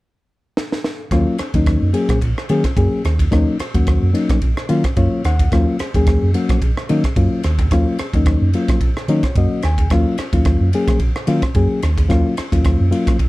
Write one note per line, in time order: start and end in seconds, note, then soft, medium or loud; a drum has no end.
0.57 snare medium
0.72 snare medium
0.84 snare medium
1.11 1.24 D#2 medium
1.11 1.36 F#3 medium
1.11 1.36 A#3 medium
1.11 1.36 C#4 medium
1.11 1.36 F4 loud
1.11 kick medium
1.11 cross-stick medium
1.11 ride medium
1.38 muted fingered electric bass stroke soft
1.38 cross-stick medium
1.38 ride medium
1.54 1.77 D#2 medium
1.54 1.89 F#3 medium
1.54 1.89 A#3 medium
1.54 1.89 C#4 medium
1.54 1.90 D#4 medium
1.54 kick medium
1.54 ride medium
1.66 kick loud
1.66 cross-stick medium
1.66 ride medium
1.82 1.92 F#2 medium
1.93 2.18 F#3 medium
1.93 2.18 A#3 medium
1.93 2.18 C#4 medium
1.93 2.18 G#4 medium
1.93 ride medium
2.09 2.32 A#1 medium
2.09 kick medium
2.09 cross-stick medium
2.09 ride medium
2.22 2.29 C#4 soft
2.22 2.30 F4 soft
2.22 kick medium
2.22 ride medium
2.38 cross-stick medium
2.49 2.62 D#3 medium
2.49 2.62 F#3 loud
2.49 2.62 A#3 medium
2.49 2.63 C#4 medium
2.49 2.63 G#4 loud
2.49 ride medium
2.64 kick medium
2.64 cross-stick medium
2.64 ride medium
2.76 2.89 F#2 medium
2.76 3.01 F#3 medium
2.76 3.01 A#3 medium
2.76 3.01 C#4 medium
2.76 3.01 G#4 medium
2.76 kick loud
2.76 ride medium
3.03 3.28 D#2 medium
3.03 3.11 C#4 soft
3.03 3.12 G#4 soft
3.03 cross-stick medium
3.03 ride medium
3.18 3.25 C#4 soft
3.18 3.25 F4 soft
3.18 kick medium
3.18 ride medium
3.31 3.44 D#2 medium
3.31 3.56 F#3 medium
3.31 3.56 A#3 medium
3.31 3.56 C#4 medium
3.31 3.56 D#4 loud
3.31 kick medium
3.31 cross-stick medium
3.31 ride medium
3.59 muted fingered electric bass stroke soft
3.59 cross-stick medium
3.59 ride medium
3.74 3.98 D#2 medium
3.74 4.09 F#3 medium
3.74 4.09 A#3 medium
3.74 4.10 C#4 medium
3.74 4.09 F#4 medium
3.74 kick medium
3.74 ride medium
3.87 kick loud
3.87 cross-stick medium
3.87 ride medium
4.02 4.13 F#2 medium
4.13 4.38 F#3 medium
4.13 4.38 A#3 medium
4.13 4.38 C#4 medium
4.13 4.38 D#4 medium
4.13 ride medium
4.29 4.53 A#1 medium
4.29 kick medium
4.29 cross-stick medium
4.29 ride medium
4.42 4.49 F4 soft
4.42 kick medium
4.42 ride medium
4.57 cross-stick medium
4.69 4.82 D#3 medium
4.69 4.82 F#3 loud
4.69 4.82 A#3 medium
4.69 4.82 C#4 medium
4.69 4.83 F4 loud
4.69 ride medium
4.84 4.90 C#4 soft
4.84 kick medium
4.84 cross-stick medium
4.84 ride soft
4.96 5.09 F#2 medium
4.96 5.21 F#3 medium
4.96 5.21 A#3 medium
4.96 5.21 C#4 medium
4.96 5.21 F4 medium
4.96 5.23 C#5 medium
4.96 kick loud
4.96 ride medium
5.24 5.47 D#2 medium
5.24 5.32 C#4 soft
5.24 5.32 D#4 soft
5.24 5.51 F#5 medium
5.24 cross-stick medium
5.24 ride medium
5.39 5.46 C#4 soft
5.39 5.46 F4 soft
5.39 kick medium
5.39 ride medium
5.52 5.65 D#2 medium
5.52 5.76 F#3 loud
5.52 5.76 A#3 medium
5.52 5.76 C#4 medium
5.52 5.76 F4 loud
5.52 kick medium
5.52 cross-stick medium
5.52 ride medium
5.79 5.87 C#4 soft
5.79 5.88 G#4 soft
5.79 muted fingered electric bass stroke soft
5.79 cross-stick medium
5.79 ride medium
5.94 6.17 D#2 medium
5.94 6.30 F#3 medium
5.94 6.30 A#3 medium
5.94 6.30 C#4 medium
5.94 6.30 G#4 medium
5.94 kick medium
5.94 ride medium
6.07 kick loud
6.07 cross-stick medium
6.07 ride medium
6.23 6.33 F#2 medium
6.34 6.58 F#3 medium
6.34 6.59 A#3 medium
6.34 6.59 C#4 medium
6.34 6.59 F#4 medium
6.34 ride medium
6.49 6.72 A#1 medium
6.49 kick medium
6.49 cross-stick medium
6.49 ride medium
6.62 6.69 C#4 soft
6.62 6.70 G#4 soft
6.62 kick medium
6.62 ride medium
6.77 cross-stick medium
6.89 7.02 D#3 medium
6.89 7.02 F#3 loud
6.89 7.03 A#3 loud
6.89 7.03 C#4 medium
6.89 7.03 D#4 loud
6.89 ride medium
7.04 kick medium
7.04 cross-stick medium
7.04 ride medium
7.16 7.29 F#2 medium
7.16 7.41 F#3 medium
7.16 7.41 A#3 medium
7.16 7.41 C#4 medium
7.16 7.41 F4 medium
7.16 kick loud
7.16 ride medium
7.32 muted fingered electric bass stroke soft
7.43 7.67 D#2 medium
7.43 cross-stick medium
7.43 ride medium
7.59 7.65 C#4 soft
7.59 7.66 F#4 soft
7.59 kick medium
7.59 ride medium
7.71 7.84 D#2 medium
7.71 7.96 F#3 medium
7.71 7.96 A#3 medium
7.71 7.96 C#4 medium
7.71 7.97 F4 loud
7.71 kick medium
7.71 cross-stick medium
7.71 ride medium
7.99 8.06 C#4 soft
7.99 8.07 G#4 soft
7.99 muted fingered electric bass stroke soft
7.99 cross-stick medium
7.99 ride medium
8.13 8.37 D#2 medium
8.13 8.49 F#3 medium
8.13 8.49 A#3 medium
8.13 8.49 C#4 medium
8.13 8.49 D#4 medium
8.13 kick medium
8.13 ride medium
8.26 kick loud
8.26 cross-stick medium
8.26 ride medium
8.41 8.52 F#2 medium
8.53 8.78 F#3 medium
8.53 8.78 A#3 medium
8.53 8.78 C#4 medium
8.53 8.79 F4 medium
8.53 ride medium
8.68 8.92 A#1 medium
8.68 kick medium
8.68 cross-stick medium
8.68 ride medium
8.81 kick medium
8.81 ride medium
8.97 cross-stick medium
9.08 9.21 D#3 medium
9.08 9.22 F#3 loud
9.08 9.22 A#3 medium
9.08 9.22 C#4 medium
9.08 9.22 D#4 loud
9.08 9.35 C#5 medium
9.08 ride medium
9.23 9.30 C#4 soft
9.23 9.31 F4 soft
9.23 kick medium
9.23 cross-stick medium
9.23 ride medium
9.35 9.48 F#2 medium
9.35 9.61 F#3 medium
9.35 9.61 A#3 medium
9.35 9.61 C#4 medium
9.35 9.61 F#4 medium
9.35 9.62 D#5 medium
9.35 kick loud
9.35 ride medium
9.62 9.87 D#2 medium
9.62 9.72 C#4 soft
9.62 9.72 F#4 soft
9.62 9.90 G#5 medium
9.62 cross-stick medium
9.62 ride medium
9.78 9.85 C#4 soft
9.78 9.86 G#4 soft
9.78 kick medium
9.78 ride medium
9.90 10.03 D#2 medium
9.90 10.16 F#3 medium
9.90 10.16 A#3 medium
9.90 10.16 C#4 medium
9.90 10.16 F4 loud
9.90 kick medium
9.90 cross-stick medium
9.90 ride medium
10.18 muted fingered electric bass stroke soft
10.18 cross-stick medium
10.18 ride medium
10.33 10.56 D#2 medium
10.33 10.68 F#3 medium
10.33 10.68 A#3 medium
10.33 10.68 C#4 medium
10.33 10.68 F4 medium
10.33 kick medium
10.33 ride medium
10.45 kick loud
10.45 cross-stick medium
10.45 ride medium
10.60 10.71 F#2 medium
10.73 10.98 F#3 medium
10.73 10.98 A#3 medium
10.73 10.98 C#4 medium
10.73 10.98 G#4 medium
10.73 ride medium
10.88 11.11 A#1 medium
10.88 kick medium
10.88 cross-stick medium
10.88 ride medium
10.99 11.09 C#4 soft
10.99 11.09 F#4 soft
10.99 kick medium
10.99 ride medium
11.16 cross-stick medium
11.27 11.41 D#3 medium
11.27 11.41 F#3 loud
11.27 11.41 A#3 medium
11.27 11.41 C#4 medium
11.27 11.41 F4 loud
11.27 ride medium
11.42 kick medium
11.42 cross-stick medium
11.42 ride medium
11.55 11.68 F#2 medium
11.55 11.80 F#3 medium
11.55 11.80 A#3 medium
11.55 11.80 C#4 medium
11.55 11.80 G#4 medium
11.55 kick loud
11.55 ride medium
11.82 12.06 D#2 medium
11.82 11.90 C#4 soft
11.82 11.90 F#4 soft
11.82 cross-stick medium
11.82 ride medium
11.97 12.04 C#4 soft
11.97 12.04 G#4 soft
11.97 kick medium
11.97 ride medium
12.09 12.23 D#2 medium
12.09 12.34 F#3 loud
12.09 12.34 A#3 medium
12.09 12.34 C#4 medium
12.09 12.34 F4 loud
12.09 kick medium
12.09 cross-stick medium
12.09 ride medium
12.37 muted fingered electric bass stroke soft
12.37 cross-stick medium
12.37 ride medium
12.52 12.76 D#2 medium
12.52 12.87 F#3 medium
12.52 12.87 A#3 medium
12.52 12.87 C#4 medium
12.52 12.87 F4 medium
12.52 kick medium
12.52 ride medium
12.65 kick loud
12.65 cross-stick medium
12.65 ride medium
12.80 12.91 F#2 medium
12.91 13.16 F#3 medium
12.91 13.16 A#3 medium
12.91 13.16 C#4 medium
12.91 13.16 F4 medium
12.91 ride medium
13.07 13.29 A#1 medium
13.07 kick medium
13.07 cross-stick medium
13.07 ride medium
13.19 13.28 F4 soft
13.19 kick medium
13.19 ride medium